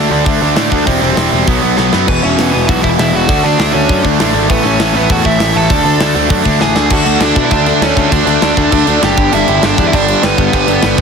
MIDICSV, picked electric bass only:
0, 0, Header, 1, 2, 480
1, 0, Start_track
1, 0, Tempo, 302115
1, 1376, Time_signature, 4, 2, 24, 8
1, 17494, End_track
2, 0, Start_track
2, 0, Title_t, "Picked electric bass"
2, 0, Program_c, 0, 34
2, 163, Note_on_c, 0, 38, 86
2, 354, Note_off_c, 0, 38, 0
2, 413, Note_on_c, 0, 38, 86
2, 599, Note_off_c, 0, 38, 0
2, 669, Note_on_c, 0, 38, 87
2, 849, Note_off_c, 0, 38, 0
2, 899, Note_on_c, 0, 45, 82
2, 1083, Note_off_c, 0, 45, 0
2, 1147, Note_on_c, 0, 38, 83
2, 1329, Note_off_c, 0, 38, 0
2, 1385, Note_on_c, 0, 28, 89
2, 1568, Note_off_c, 0, 28, 0
2, 1615, Note_on_c, 0, 28, 82
2, 1801, Note_off_c, 0, 28, 0
2, 1858, Note_on_c, 0, 28, 77
2, 2043, Note_off_c, 0, 28, 0
2, 2103, Note_on_c, 0, 28, 85
2, 2287, Note_off_c, 0, 28, 0
2, 2351, Note_on_c, 0, 35, 82
2, 2532, Note_off_c, 0, 35, 0
2, 2592, Note_on_c, 0, 35, 84
2, 2772, Note_off_c, 0, 35, 0
2, 2826, Note_on_c, 0, 35, 82
2, 3009, Note_off_c, 0, 35, 0
2, 3077, Note_on_c, 0, 42, 83
2, 3256, Note_off_c, 0, 42, 0
2, 3312, Note_on_c, 0, 28, 90
2, 3507, Note_off_c, 0, 28, 0
2, 3553, Note_on_c, 0, 28, 85
2, 3748, Note_off_c, 0, 28, 0
2, 3795, Note_on_c, 0, 28, 79
2, 3989, Note_off_c, 0, 28, 0
2, 4047, Note_on_c, 0, 28, 82
2, 4236, Note_off_c, 0, 28, 0
2, 4275, Note_on_c, 0, 35, 88
2, 4469, Note_off_c, 0, 35, 0
2, 4521, Note_on_c, 0, 28, 83
2, 4712, Note_off_c, 0, 28, 0
2, 4760, Note_on_c, 0, 28, 94
2, 4952, Note_off_c, 0, 28, 0
2, 4987, Note_on_c, 0, 28, 88
2, 5185, Note_off_c, 0, 28, 0
2, 5229, Note_on_c, 0, 38, 89
2, 5426, Note_off_c, 0, 38, 0
2, 5475, Note_on_c, 0, 38, 88
2, 5669, Note_off_c, 0, 38, 0
2, 5708, Note_on_c, 0, 38, 84
2, 5905, Note_off_c, 0, 38, 0
2, 5953, Note_on_c, 0, 38, 89
2, 6148, Note_off_c, 0, 38, 0
2, 6189, Note_on_c, 0, 42, 90
2, 6386, Note_off_c, 0, 42, 0
2, 6433, Note_on_c, 0, 38, 83
2, 6628, Note_off_c, 0, 38, 0
2, 6674, Note_on_c, 0, 33, 87
2, 6869, Note_off_c, 0, 33, 0
2, 6905, Note_on_c, 0, 32, 86
2, 7104, Note_off_c, 0, 32, 0
2, 7152, Note_on_c, 0, 33, 87
2, 7348, Note_off_c, 0, 33, 0
2, 7379, Note_on_c, 0, 33, 92
2, 7580, Note_off_c, 0, 33, 0
2, 7614, Note_on_c, 0, 33, 89
2, 7817, Note_off_c, 0, 33, 0
2, 7847, Note_on_c, 0, 33, 94
2, 8053, Note_off_c, 0, 33, 0
2, 8104, Note_on_c, 0, 40, 92
2, 8303, Note_off_c, 0, 40, 0
2, 8344, Note_on_c, 0, 33, 89
2, 8543, Note_off_c, 0, 33, 0
2, 8578, Note_on_c, 0, 33, 88
2, 8779, Note_off_c, 0, 33, 0
2, 8825, Note_on_c, 0, 33, 88
2, 9024, Note_off_c, 0, 33, 0
2, 9060, Note_on_c, 0, 38, 95
2, 9261, Note_off_c, 0, 38, 0
2, 9287, Note_on_c, 0, 38, 93
2, 9493, Note_off_c, 0, 38, 0
2, 9537, Note_on_c, 0, 38, 85
2, 9739, Note_off_c, 0, 38, 0
2, 9776, Note_on_c, 0, 38, 88
2, 9978, Note_off_c, 0, 38, 0
2, 10022, Note_on_c, 0, 42, 83
2, 10221, Note_off_c, 0, 42, 0
2, 10254, Note_on_c, 0, 38, 91
2, 10457, Note_off_c, 0, 38, 0
2, 10514, Note_on_c, 0, 33, 86
2, 10708, Note_off_c, 0, 33, 0
2, 10738, Note_on_c, 0, 38, 83
2, 10939, Note_off_c, 0, 38, 0
2, 10976, Note_on_c, 0, 38, 89
2, 11134, Note_off_c, 0, 38, 0
2, 11218, Note_on_c, 0, 38, 88
2, 11375, Note_off_c, 0, 38, 0
2, 11460, Note_on_c, 0, 38, 86
2, 11617, Note_off_c, 0, 38, 0
2, 11694, Note_on_c, 0, 47, 91
2, 11853, Note_off_c, 0, 47, 0
2, 11938, Note_on_c, 0, 38, 91
2, 12252, Note_off_c, 0, 38, 0
2, 12417, Note_on_c, 0, 38, 93
2, 12574, Note_off_c, 0, 38, 0
2, 12662, Note_on_c, 0, 38, 91
2, 12817, Note_off_c, 0, 38, 0
2, 12899, Note_on_c, 0, 38, 98
2, 13056, Note_off_c, 0, 38, 0
2, 13135, Note_on_c, 0, 38, 93
2, 13292, Note_off_c, 0, 38, 0
2, 13385, Note_on_c, 0, 38, 86
2, 13539, Note_off_c, 0, 38, 0
2, 13623, Note_on_c, 0, 38, 93
2, 13778, Note_off_c, 0, 38, 0
2, 13862, Note_on_c, 0, 38, 90
2, 14017, Note_off_c, 0, 38, 0
2, 14104, Note_on_c, 0, 38, 94
2, 14258, Note_off_c, 0, 38, 0
2, 14344, Note_on_c, 0, 30, 95
2, 14498, Note_off_c, 0, 30, 0
2, 14586, Note_on_c, 0, 31, 94
2, 14739, Note_off_c, 0, 31, 0
2, 14822, Note_on_c, 0, 31, 96
2, 14976, Note_off_c, 0, 31, 0
2, 15068, Note_on_c, 0, 31, 92
2, 15220, Note_off_c, 0, 31, 0
2, 15297, Note_on_c, 0, 31, 94
2, 15453, Note_off_c, 0, 31, 0
2, 15542, Note_on_c, 0, 40, 97
2, 15696, Note_off_c, 0, 40, 0
2, 15781, Note_on_c, 0, 31, 99
2, 16093, Note_off_c, 0, 31, 0
2, 16266, Note_on_c, 0, 31, 94
2, 16419, Note_off_c, 0, 31, 0
2, 16492, Note_on_c, 0, 31, 95
2, 16649, Note_off_c, 0, 31, 0
2, 16740, Note_on_c, 0, 31, 99
2, 16895, Note_off_c, 0, 31, 0
2, 16967, Note_on_c, 0, 31, 94
2, 17126, Note_off_c, 0, 31, 0
2, 17216, Note_on_c, 0, 31, 86
2, 17372, Note_off_c, 0, 31, 0
2, 17445, Note_on_c, 0, 31, 95
2, 17494, Note_off_c, 0, 31, 0
2, 17494, End_track
0, 0, End_of_file